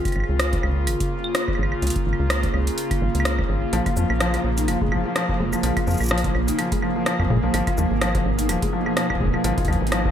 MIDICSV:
0, 0, Header, 1, 5, 480
1, 0, Start_track
1, 0, Tempo, 476190
1, 1839, Time_signature, 4, 2, 24, 8
1, 10192, End_track
2, 0, Start_track
2, 0, Title_t, "Ambient pad"
2, 0, Program_c, 0, 92
2, 0, Note_on_c, 0, 49, 80
2, 0, Note_on_c, 0, 60, 91
2, 0, Note_on_c, 0, 65, 89
2, 0, Note_on_c, 0, 68, 70
2, 316, Note_on_c, 0, 58, 89
2, 870, Note_off_c, 0, 60, 0
2, 3759, Note_off_c, 0, 68, 0
2, 4835, Note_on_c, 0, 68, 85
2, 7599, Note_off_c, 0, 49, 0
2, 7599, Note_on_c, 0, 47, 76
2, 8295, Note_on_c, 0, 63, 97
2, 9146, Note_off_c, 0, 65, 0
2, 10192, Note_off_c, 0, 47, 0
2, 10192, Note_off_c, 0, 58, 0
2, 10192, Note_off_c, 0, 63, 0
2, 10192, Note_off_c, 0, 68, 0
2, 10192, End_track
3, 0, Start_track
3, 0, Title_t, "Felt piano"
3, 0, Program_c, 1, 0
3, 3759, Note_on_c, 1, 53, 102
3, 3829, Note_off_c, 1, 53, 0
3, 3893, Note_on_c, 1, 65, 78
3, 3948, Note_off_c, 1, 65, 0
3, 3999, Note_on_c, 1, 53, 77
3, 4069, Note_off_c, 1, 53, 0
3, 4239, Note_on_c, 1, 53, 98
3, 4309, Note_off_c, 1, 53, 0
3, 4373, Note_on_c, 1, 53, 76
3, 4428, Note_off_c, 1, 53, 0
3, 4614, Note_on_c, 1, 51, 77
3, 4668, Note_off_c, 1, 51, 0
3, 4719, Note_on_c, 1, 53, 85
3, 4789, Note_off_c, 1, 53, 0
3, 4853, Note_on_c, 1, 56, 80
3, 4908, Note_off_c, 1, 56, 0
3, 4959, Note_on_c, 1, 53, 77
3, 5029, Note_off_c, 1, 53, 0
3, 5093, Note_on_c, 1, 53, 75
3, 5126, Note_off_c, 1, 53, 0
3, 5199, Note_on_c, 1, 53, 99
3, 5269, Note_off_c, 1, 53, 0
3, 5333, Note_on_c, 1, 53, 78
3, 5388, Note_off_c, 1, 53, 0
3, 5439, Note_on_c, 1, 56, 79
3, 5509, Note_off_c, 1, 56, 0
3, 5573, Note_on_c, 1, 53, 78
3, 5628, Note_off_c, 1, 53, 0
3, 5678, Note_on_c, 1, 53, 103
3, 5748, Note_off_c, 1, 53, 0
3, 5813, Note_on_c, 1, 65, 74
3, 5868, Note_off_c, 1, 65, 0
3, 5918, Note_on_c, 1, 53, 79
3, 5988, Note_off_c, 1, 53, 0
3, 6159, Note_on_c, 1, 53, 100
3, 6229, Note_off_c, 1, 53, 0
3, 6293, Note_on_c, 1, 53, 76
3, 6348, Note_off_c, 1, 53, 0
3, 6533, Note_on_c, 1, 51, 80
3, 6588, Note_off_c, 1, 51, 0
3, 6638, Note_on_c, 1, 53, 87
3, 6708, Note_off_c, 1, 53, 0
3, 6773, Note_on_c, 1, 56, 80
3, 6828, Note_off_c, 1, 56, 0
3, 6878, Note_on_c, 1, 53, 75
3, 6948, Note_off_c, 1, 53, 0
3, 7013, Note_on_c, 1, 53, 77
3, 7046, Note_off_c, 1, 53, 0
3, 7119, Note_on_c, 1, 53, 105
3, 7188, Note_off_c, 1, 53, 0
3, 7253, Note_on_c, 1, 53, 77
3, 7308, Note_off_c, 1, 53, 0
3, 7359, Note_on_c, 1, 56, 78
3, 7429, Note_off_c, 1, 56, 0
3, 7493, Note_on_c, 1, 53, 79
3, 7548, Note_off_c, 1, 53, 0
3, 7599, Note_on_c, 1, 53, 100
3, 7669, Note_off_c, 1, 53, 0
3, 7733, Note_on_c, 1, 65, 77
3, 7788, Note_off_c, 1, 65, 0
3, 7839, Note_on_c, 1, 53, 80
3, 7909, Note_off_c, 1, 53, 0
3, 8079, Note_on_c, 1, 53, 103
3, 8149, Note_off_c, 1, 53, 0
3, 8213, Note_on_c, 1, 53, 79
3, 8268, Note_off_c, 1, 53, 0
3, 8454, Note_on_c, 1, 51, 77
3, 8508, Note_off_c, 1, 51, 0
3, 8559, Note_on_c, 1, 53, 86
3, 8629, Note_off_c, 1, 53, 0
3, 8694, Note_on_c, 1, 56, 78
3, 8748, Note_off_c, 1, 56, 0
3, 8799, Note_on_c, 1, 53, 76
3, 8869, Note_off_c, 1, 53, 0
3, 8934, Note_on_c, 1, 53, 77
3, 8966, Note_off_c, 1, 53, 0
3, 9039, Note_on_c, 1, 53, 105
3, 9109, Note_off_c, 1, 53, 0
3, 9173, Note_on_c, 1, 53, 76
3, 9228, Note_off_c, 1, 53, 0
3, 9279, Note_on_c, 1, 56, 78
3, 9349, Note_off_c, 1, 56, 0
3, 9413, Note_on_c, 1, 53, 80
3, 9468, Note_off_c, 1, 53, 0
3, 9519, Note_on_c, 1, 53, 106
3, 9589, Note_off_c, 1, 53, 0
3, 9653, Note_on_c, 1, 65, 77
3, 9708, Note_off_c, 1, 65, 0
3, 9759, Note_on_c, 1, 53, 82
3, 9829, Note_off_c, 1, 53, 0
3, 9999, Note_on_c, 1, 53, 102
3, 10069, Note_off_c, 1, 53, 0
3, 10133, Note_on_c, 1, 53, 77
3, 10188, Note_off_c, 1, 53, 0
3, 10192, End_track
4, 0, Start_track
4, 0, Title_t, "Analog synth bass"
4, 0, Program_c, 2, 38
4, 159, Note_on_c, 2, 32, 84
4, 245, Note_off_c, 2, 32, 0
4, 293, Note_on_c, 2, 37, 84
4, 578, Note_off_c, 2, 37, 0
4, 639, Note_on_c, 2, 37, 85
4, 879, Note_on_c, 2, 32, 102
4, 894, Note_off_c, 2, 37, 0
4, 965, Note_off_c, 2, 32, 0
4, 1599, Note_on_c, 2, 32, 89
4, 1762, Note_off_c, 2, 32, 0
4, 1838, Note_on_c, 2, 37, 102
4, 1924, Note_off_c, 2, 37, 0
4, 2079, Note_on_c, 2, 32, 82
4, 2164, Note_off_c, 2, 32, 0
4, 2213, Note_on_c, 2, 37, 83
4, 2498, Note_off_c, 2, 37, 0
4, 2559, Note_on_c, 2, 37, 90
4, 2722, Note_off_c, 2, 37, 0
4, 3039, Note_on_c, 2, 32, 102
4, 3125, Note_off_c, 2, 32, 0
4, 3173, Note_on_c, 2, 37, 88
4, 3457, Note_off_c, 2, 37, 0
4, 3519, Note_on_c, 2, 32, 98
4, 3682, Note_off_c, 2, 32, 0
4, 3759, Note_on_c, 2, 34, 99
4, 3844, Note_off_c, 2, 34, 0
4, 3998, Note_on_c, 2, 41, 84
4, 4084, Note_off_c, 2, 41, 0
4, 4133, Note_on_c, 2, 34, 84
4, 4417, Note_off_c, 2, 34, 0
4, 4478, Note_on_c, 2, 34, 86
4, 4719, Note_on_c, 2, 29, 99
4, 4734, Note_off_c, 2, 34, 0
4, 4804, Note_off_c, 2, 29, 0
4, 5439, Note_on_c, 2, 29, 91
4, 5602, Note_off_c, 2, 29, 0
4, 5679, Note_on_c, 2, 34, 104
4, 5764, Note_off_c, 2, 34, 0
4, 5918, Note_on_c, 2, 41, 86
4, 6004, Note_off_c, 2, 41, 0
4, 6053, Note_on_c, 2, 34, 84
4, 6338, Note_off_c, 2, 34, 0
4, 6398, Note_on_c, 2, 34, 88
4, 6562, Note_off_c, 2, 34, 0
4, 7253, Note_on_c, 2, 41, 88
4, 7320, Note_off_c, 2, 41, 0
4, 7359, Note_on_c, 2, 46, 94
4, 7444, Note_off_c, 2, 46, 0
4, 7493, Note_on_c, 2, 34, 80
4, 7561, Note_off_c, 2, 34, 0
4, 7599, Note_on_c, 2, 32, 99
4, 7685, Note_off_c, 2, 32, 0
4, 7839, Note_on_c, 2, 39, 84
4, 7925, Note_off_c, 2, 39, 0
4, 7973, Note_on_c, 2, 32, 83
4, 8258, Note_off_c, 2, 32, 0
4, 8319, Note_on_c, 2, 32, 87
4, 8559, Note_on_c, 2, 27, 101
4, 8574, Note_off_c, 2, 32, 0
4, 8645, Note_off_c, 2, 27, 0
4, 9279, Note_on_c, 2, 27, 93
4, 9442, Note_off_c, 2, 27, 0
4, 9519, Note_on_c, 2, 32, 105
4, 9605, Note_off_c, 2, 32, 0
4, 9759, Note_on_c, 2, 39, 83
4, 9844, Note_off_c, 2, 39, 0
4, 9893, Note_on_c, 2, 32, 87
4, 10178, Note_off_c, 2, 32, 0
4, 10192, End_track
5, 0, Start_track
5, 0, Title_t, "Drums"
5, 53, Note_on_c, 9, 36, 125
5, 53, Note_on_c, 9, 42, 37
5, 53, Note_on_c, 9, 75, 24
5, 79, Note_off_c, 9, 42, 0
5, 79, Note_off_c, 9, 75, 0
5, 79, Note_on_c, 9, 42, 29
5, 79, Note_on_c, 9, 75, 29
5, 124, Note_off_c, 9, 42, 0
5, 124, Note_off_c, 9, 75, 0
5, 124, Note_on_c, 9, 42, 24
5, 124, Note_on_c, 9, 75, 33
5, 154, Note_off_c, 9, 36, 0
5, 159, Note_off_c, 9, 75, 0
5, 159, Note_on_c, 9, 75, 37
5, 203, Note_off_c, 9, 75, 0
5, 203, Note_on_c, 9, 75, 39
5, 224, Note_off_c, 9, 42, 0
5, 238, Note_off_c, 9, 75, 0
5, 238, Note_on_c, 9, 75, 45
5, 339, Note_off_c, 9, 75, 0
5, 398, Note_on_c, 9, 37, 126
5, 398, Note_on_c, 9, 42, 82
5, 398, Note_on_c, 9, 75, 54
5, 499, Note_off_c, 9, 37, 0
5, 499, Note_off_c, 9, 42, 0
5, 499, Note_off_c, 9, 75, 0
5, 533, Note_on_c, 9, 36, 127
5, 533, Note_on_c, 9, 42, 39
5, 634, Note_off_c, 9, 36, 0
5, 634, Note_off_c, 9, 42, 0
5, 638, Note_on_c, 9, 75, 76
5, 739, Note_off_c, 9, 75, 0
5, 878, Note_on_c, 9, 42, 84
5, 878, Note_on_c, 9, 75, 55
5, 979, Note_off_c, 9, 42, 0
5, 979, Note_off_c, 9, 75, 0
5, 1013, Note_on_c, 9, 36, 112
5, 1013, Note_on_c, 9, 42, 54
5, 1113, Note_off_c, 9, 42, 0
5, 1114, Note_off_c, 9, 36, 0
5, 1253, Note_on_c, 9, 75, 51
5, 1353, Note_off_c, 9, 75, 0
5, 1358, Note_on_c, 9, 37, 127
5, 1358, Note_on_c, 9, 42, 84
5, 1459, Note_off_c, 9, 37, 0
5, 1459, Note_off_c, 9, 42, 0
5, 1493, Note_on_c, 9, 36, 123
5, 1493, Note_on_c, 9, 75, 35
5, 1563, Note_off_c, 9, 75, 0
5, 1563, Note_on_c, 9, 75, 51
5, 1594, Note_off_c, 9, 36, 0
5, 1643, Note_off_c, 9, 75, 0
5, 1643, Note_on_c, 9, 75, 60
5, 1733, Note_off_c, 9, 75, 0
5, 1733, Note_on_c, 9, 75, 53
5, 1834, Note_off_c, 9, 75, 0
5, 1838, Note_on_c, 9, 42, 37
5, 1883, Note_off_c, 9, 42, 0
5, 1883, Note_on_c, 9, 42, 49
5, 1918, Note_off_c, 9, 42, 0
5, 1918, Note_on_c, 9, 42, 63
5, 1973, Note_off_c, 9, 42, 0
5, 1973, Note_on_c, 9, 36, 122
5, 1973, Note_on_c, 9, 42, 37
5, 2074, Note_off_c, 9, 36, 0
5, 2074, Note_off_c, 9, 42, 0
5, 2146, Note_on_c, 9, 75, 50
5, 2247, Note_off_c, 9, 75, 0
5, 2319, Note_on_c, 9, 37, 127
5, 2319, Note_on_c, 9, 42, 80
5, 2319, Note_on_c, 9, 75, 77
5, 2420, Note_off_c, 9, 37, 0
5, 2420, Note_off_c, 9, 42, 0
5, 2420, Note_off_c, 9, 75, 0
5, 2453, Note_on_c, 9, 36, 110
5, 2453, Note_on_c, 9, 42, 36
5, 2554, Note_off_c, 9, 36, 0
5, 2554, Note_off_c, 9, 42, 0
5, 2559, Note_on_c, 9, 75, 48
5, 2660, Note_off_c, 9, 75, 0
5, 2693, Note_on_c, 9, 42, 52
5, 2794, Note_off_c, 9, 42, 0
5, 2799, Note_on_c, 9, 42, 82
5, 2900, Note_off_c, 9, 42, 0
5, 2933, Note_on_c, 9, 36, 126
5, 2933, Note_on_c, 9, 42, 52
5, 2933, Note_on_c, 9, 75, 52
5, 3034, Note_off_c, 9, 36, 0
5, 3034, Note_off_c, 9, 42, 0
5, 3034, Note_off_c, 9, 75, 0
5, 3173, Note_on_c, 9, 42, 37
5, 3226, Note_on_c, 9, 75, 77
5, 3274, Note_off_c, 9, 42, 0
5, 3279, Note_on_c, 9, 37, 127
5, 3279, Note_on_c, 9, 42, 79
5, 3327, Note_off_c, 9, 75, 0
5, 3380, Note_off_c, 9, 37, 0
5, 3380, Note_off_c, 9, 42, 0
5, 3413, Note_on_c, 9, 36, 125
5, 3413, Note_on_c, 9, 75, 51
5, 3514, Note_off_c, 9, 36, 0
5, 3514, Note_off_c, 9, 75, 0
5, 3759, Note_on_c, 9, 42, 78
5, 3859, Note_off_c, 9, 42, 0
5, 3893, Note_on_c, 9, 36, 118
5, 3893, Note_on_c, 9, 42, 36
5, 3893, Note_on_c, 9, 75, 52
5, 3993, Note_off_c, 9, 36, 0
5, 3994, Note_off_c, 9, 42, 0
5, 3994, Note_off_c, 9, 75, 0
5, 3998, Note_on_c, 9, 69, 81
5, 4099, Note_off_c, 9, 69, 0
5, 4133, Note_on_c, 9, 75, 76
5, 4234, Note_off_c, 9, 75, 0
5, 4239, Note_on_c, 9, 37, 121
5, 4239, Note_on_c, 9, 42, 77
5, 4340, Note_off_c, 9, 37, 0
5, 4340, Note_off_c, 9, 42, 0
5, 4373, Note_on_c, 9, 42, 35
5, 4373, Note_on_c, 9, 75, 51
5, 4474, Note_off_c, 9, 42, 0
5, 4474, Note_off_c, 9, 75, 0
5, 4613, Note_on_c, 9, 42, 50
5, 4613, Note_on_c, 9, 69, 77
5, 4714, Note_off_c, 9, 42, 0
5, 4714, Note_off_c, 9, 69, 0
5, 4718, Note_on_c, 9, 42, 77
5, 4718, Note_on_c, 9, 75, 53
5, 4819, Note_off_c, 9, 42, 0
5, 4819, Note_off_c, 9, 75, 0
5, 4853, Note_on_c, 9, 36, 110
5, 4923, Note_off_c, 9, 36, 0
5, 4923, Note_on_c, 9, 36, 93
5, 4959, Note_on_c, 9, 75, 79
5, 5003, Note_off_c, 9, 36, 0
5, 5003, Note_on_c, 9, 36, 75
5, 5059, Note_off_c, 9, 75, 0
5, 5104, Note_off_c, 9, 36, 0
5, 5198, Note_on_c, 9, 37, 123
5, 5198, Note_on_c, 9, 42, 77
5, 5198, Note_on_c, 9, 75, 52
5, 5299, Note_off_c, 9, 37, 0
5, 5299, Note_off_c, 9, 42, 0
5, 5299, Note_off_c, 9, 75, 0
5, 5333, Note_on_c, 9, 36, 120
5, 5434, Note_off_c, 9, 36, 0
5, 5573, Note_on_c, 9, 69, 79
5, 5573, Note_on_c, 9, 75, 52
5, 5674, Note_off_c, 9, 69, 0
5, 5674, Note_off_c, 9, 75, 0
5, 5678, Note_on_c, 9, 42, 78
5, 5779, Note_off_c, 9, 42, 0
5, 5813, Note_on_c, 9, 36, 100
5, 5813, Note_on_c, 9, 42, 36
5, 5813, Note_on_c, 9, 75, 81
5, 5914, Note_off_c, 9, 36, 0
5, 5914, Note_off_c, 9, 42, 0
5, 5914, Note_off_c, 9, 75, 0
5, 5919, Note_on_c, 9, 69, 38
5, 5952, Note_off_c, 9, 69, 0
5, 5952, Note_on_c, 9, 69, 44
5, 5986, Note_off_c, 9, 69, 0
5, 5986, Note_on_c, 9, 69, 48
5, 6019, Note_off_c, 9, 69, 0
5, 6019, Note_on_c, 9, 69, 53
5, 6053, Note_off_c, 9, 69, 0
5, 6053, Note_on_c, 9, 69, 56
5, 6053, Note_on_c, 9, 75, 52
5, 6079, Note_off_c, 9, 69, 0
5, 6079, Note_on_c, 9, 69, 62
5, 6106, Note_off_c, 9, 69, 0
5, 6106, Note_on_c, 9, 69, 67
5, 6133, Note_off_c, 9, 69, 0
5, 6133, Note_on_c, 9, 69, 71
5, 6154, Note_off_c, 9, 75, 0
5, 6159, Note_on_c, 9, 37, 120
5, 6226, Note_on_c, 9, 42, 78
5, 6233, Note_off_c, 9, 69, 0
5, 6260, Note_off_c, 9, 37, 0
5, 6293, Note_off_c, 9, 42, 0
5, 6293, Note_on_c, 9, 36, 116
5, 6293, Note_on_c, 9, 42, 36
5, 6394, Note_off_c, 9, 36, 0
5, 6394, Note_off_c, 9, 42, 0
5, 6399, Note_on_c, 9, 75, 51
5, 6500, Note_off_c, 9, 75, 0
5, 6533, Note_on_c, 9, 42, 50
5, 6533, Note_on_c, 9, 69, 83
5, 6634, Note_off_c, 9, 42, 0
5, 6634, Note_off_c, 9, 69, 0
5, 6639, Note_on_c, 9, 42, 78
5, 6639, Note_on_c, 9, 75, 81
5, 6740, Note_off_c, 9, 42, 0
5, 6740, Note_off_c, 9, 75, 0
5, 6773, Note_on_c, 9, 36, 120
5, 6773, Note_on_c, 9, 42, 50
5, 6874, Note_off_c, 9, 36, 0
5, 6874, Note_off_c, 9, 42, 0
5, 6879, Note_on_c, 9, 75, 53
5, 6980, Note_off_c, 9, 75, 0
5, 7119, Note_on_c, 9, 37, 114
5, 7119, Note_on_c, 9, 42, 77
5, 7220, Note_off_c, 9, 37, 0
5, 7220, Note_off_c, 9, 42, 0
5, 7253, Note_on_c, 9, 36, 47
5, 7253, Note_on_c, 9, 75, 54
5, 7306, Note_off_c, 9, 36, 0
5, 7306, Note_on_c, 9, 36, 59
5, 7354, Note_off_c, 9, 75, 0
5, 7359, Note_off_c, 9, 36, 0
5, 7359, Note_on_c, 9, 36, 71
5, 7426, Note_off_c, 9, 36, 0
5, 7426, Note_on_c, 9, 36, 87
5, 7527, Note_off_c, 9, 36, 0
5, 7599, Note_on_c, 9, 42, 80
5, 7599, Note_on_c, 9, 75, 80
5, 7700, Note_off_c, 9, 42, 0
5, 7700, Note_off_c, 9, 75, 0
5, 7733, Note_on_c, 9, 36, 111
5, 7733, Note_on_c, 9, 42, 38
5, 7733, Note_on_c, 9, 75, 57
5, 7834, Note_off_c, 9, 36, 0
5, 7834, Note_off_c, 9, 42, 0
5, 7834, Note_off_c, 9, 75, 0
5, 7839, Note_on_c, 9, 69, 85
5, 7940, Note_off_c, 9, 69, 0
5, 8079, Note_on_c, 9, 37, 110
5, 8079, Note_on_c, 9, 42, 77
5, 8079, Note_on_c, 9, 75, 52
5, 8106, Note_off_c, 9, 75, 0
5, 8106, Note_on_c, 9, 75, 44
5, 8159, Note_off_c, 9, 75, 0
5, 8159, Note_on_c, 9, 75, 29
5, 8180, Note_off_c, 9, 37, 0
5, 8180, Note_off_c, 9, 42, 0
5, 8186, Note_off_c, 9, 75, 0
5, 8186, Note_on_c, 9, 75, 24
5, 8213, Note_on_c, 9, 36, 117
5, 8213, Note_on_c, 9, 42, 37
5, 8287, Note_off_c, 9, 75, 0
5, 8314, Note_off_c, 9, 36, 0
5, 8314, Note_off_c, 9, 42, 0
5, 8453, Note_on_c, 9, 42, 53
5, 8453, Note_on_c, 9, 69, 85
5, 8554, Note_off_c, 9, 42, 0
5, 8554, Note_off_c, 9, 69, 0
5, 8559, Note_on_c, 9, 42, 80
5, 8559, Note_on_c, 9, 75, 56
5, 8660, Note_off_c, 9, 42, 0
5, 8660, Note_off_c, 9, 75, 0
5, 8693, Note_on_c, 9, 36, 100
5, 8693, Note_on_c, 9, 42, 55
5, 8794, Note_off_c, 9, 36, 0
5, 8794, Note_off_c, 9, 42, 0
5, 8933, Note_on_c, 9, 75, 55
5, 9034, Note_off_c, 9, 75, 0
5, 9039, Note_on_c, 9, 37, 116
5, 9039, Note_on_c, 9, 42, 78
5, 9140, Note_off_c, 9, 37, 0
5, 9140, Note_off_c, 9, 42, 0
5, 9173, Note_on_c, 9, 36, 52
5, 9173, Note_on_c, 9, 75, 84
5, 9226, Note_off_c, 9, 36, 0
5, 9226, Note_on_c, 9, 36, 66
5, 9274, Note_off_c, 9, 75, 0
5, 9279, Note_off_c, 9, 36, 0
5, 9279, Note_on_c, 9, 36, 84
5, 9346, Note_off_c, 9, 36, 0
5, 9346, Note_on_c, 9, 36, 95
5, 9413, Note_on_c, 9, 75, 57
5, 9447, Note_off_c, 9, 36, 0
5, 9514, Note_off_c, 9, 75, 0
5, 9519, Note_on_c, 9, 42, 82
5, 9620, Note_off_c, 9, 42, 0
5, 9653, Note_on_c, 9, 36, 109
5, 9653, Note_on_c, 9, 42, 36
5, 9723, Note_off_c, 9, 36, 0
5, 9723, Note_on_c, 9, 36, 92
5, 9724, Note_off_c, 9, 42, 0
5, 9724, Note_on_c, 9, 42, 30
5, 9759, Note_on_c, 9, 75, 57
5, 9804, Note_off_c, 9, 36, 0
5, 9804, Note_off_c, 9, 42, 0
5, 9804, Note_on_c, 9, 36, 75
5, 9804, Note_on_c, 9, 42, 25
5, 9860, Note_off_c, 9, 75, 0
5, 9904, Note_off_c, 9, 36, 0
5, 9905, Note_off_c, 9, 42, 0
5, 9946, Note_on_c, 9, 42, 35
5, 9999, Note_off_c, 9, 42, 0
5, 9999, Note_on_c, 9, 37, 119
5, 9999, Note_on_c, 9, 42, 82
5, 9999, Note_on_c, 9, 75, 86
5, 10100, Note_off_c, 9, 37, 0
5, 10100, Note_off_c, 9, 42, 0
5, 10100, Note_off_c, 9, 75, 0
5, 10133, Note_on_c, 9, 36, 104
5, 10192, Note_off_c, 9, 36, 0
5, 10192, End_track
0, 0, End_of_file